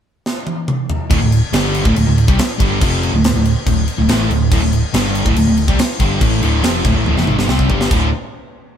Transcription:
0.26 snare
0.47 high tom
0.68 mid tom
0.90 floor tom
1.10 D1 D2 A2, kick, crash
1.21 D1 D2 A2
1.32 crash
1.53 G1 G2 D3 G3, snare, crash
1.74 crash
1.85 D1 D2 A2, kick
1.96 D1 D2 A2, crash
2.06 D1 D2 A2
2.18 crash
2.28 C2 C3 G3, kick
2.38 muted picked electric bass stroke, muted distorted electric guitar stroke, snare, crash
2.58 G1 G2 D3 G3, kick, crash
2.80 F1 F2 C3 F3, kick, crash
3.03 crash
3.12 D1 D2 A2
3.24 snare, crash
3.34 D1 D2 A2
3.45 crash
3.66 D1 D2 A2, kick, crash
3.88 crash
3.98 D1 D2 A2
4.08 A1 A2 E3 A3, snare, crash
4.30 D1 D2 A2, crash
4.50 D1 D2 A2, kick, crash
4.62 D1 D2 A2
4.73 crash
4.93 G1 G2 D3 G3, snare, crash
5.15 crash
5.25 D1 D2 A2, kick
5.36 D1 D2 A2, crash
5.47 D1 D2 A2
5.57 crash
5.68 C2 C3 G3, kick
5.78 muted distorted electric guitar stroke, muted picked electric bass stroke, snare, crash
5.99 G1 G2 D3 G3, kick, crash
6.21 A1 A2 E3 A3, kick, crash
6.41 D1 D2 A2 D3, crash
6.63 F1 F2 C3 F3, snare, crash
6.84 D1 D2 A2, kick, crash
6.94 A1 A2 E3
7.05 D1 D2 A2, high tom
7.16 F1 F2 C3, snare
7.26 G#1 G#2 D#3, mid tom
7.37 G1 G2 D3, snare
7.47 C2 C3 G3 C4, snare
7.59 kick
7.69 G1 G2 D3 G3, kick
7.81 snare
7.90 D1 D2 A2 D3, kick, crash

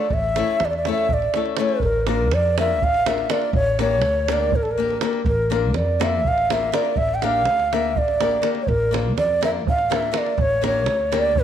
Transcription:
Already playing: D5
0.10 A1 E5, davul low
0.24 davul high
0.36 A3 C#4 E4 A4, davul high
0.48 davul high
0.60 E2, davul high
0.65 D5
0.69 D5, davul high
0.77 D5
0.85 A3 C#4 E4 A4, davul high
0.91 E5
0.98 davul high
1.09 A1, davul low
1.13 D5
1.22 davul high
1.34 A3 C#4 E4 A4, davul high
1.46 davul high
1.57 A3 C#4 E4 A4 C#5, davul high
1.69 davul high
1.80 A1 A#4, davul low
2.07 A#3 D4 F4 A#4, davul high
2.31 F2 D5, davul high
2.58 A#3 D4 F4 A#4 E5, davul high
2.81 A1 F5, davul low
2.94 davul high
3.06 A#3 D4 F4 A#4 E5, davul high
3.18 davul high
3.29 A#3 D4 F4 A#4 D5, davul high
3.42 davul high
3.53 A1 C#5, davul low
3.79 A#3 D4 G4 A#4 C#5, davul high
4.02 D2, davul high
4.28 A#3 D4 G4 A#4, davul high
4.33 D5
4.52 A1 A#4, davul low
4.63 A4, davul high
4.71 A#4
4.78 A#3 D4 G4 A#4
4.90 davul high
5.01 A#3 D4 G4 A#4, davul high
5.13 davul high
5.25 A1 A#4, davul low
5.50 A#3 D4 F4 A#4, davul high
5.74 F2 D5, davul high
6.00 A#3 D4 F4 A#4 E5, davul high
6.25 A1 F5, davul low
6.38 davul high
6.50 A#3 D4 F4 A#4 E5, davul high
6.63 davul high
6.72 A#3 D4 F4 A#4 D5, davul high
6.85 davul high
6.96 A1 E5, davul low
7.09 davul high
7.14 G5
7.22 A#3 D4 G4 A#4 F5, davul high
7.45 D2, davul high
7.60 davul high
7.73 A#3 D4 G4 A#4 E5, davul high
7.96 A1 D5, davul low
8.08 davul high
8.21 A#3 D4 G4 A#4, davul high
8.31 davul high
8.42 A#3 D4 G4 A#4, davul high
8.55 davul high
8.62 C#5
8.67 A1 A#4, davul low
8.91 A#3 D4 F4 A#4, davul high
9.17 F2 D5, davul high
9.41 A#3 D4 F4 A#4 E5, davul high
9.67 A1 F5, davul low
9.78 davul high
9.90 A#3 D4 F4 A#4, davul high
9.95 E5
10.02 davul high
10.12 A#3 D4 F4 A#4, davul high
10.18 D5
10.26 davul high
10.38 A1 C#5, davul low
10.62 A#3 D4 G4 A#4, davul high
10.67 C#5
10.86 D2, davul high
11.12 A#3 D4 G4 A#4, davul high
11.19 D5
11.36 A1, davul low

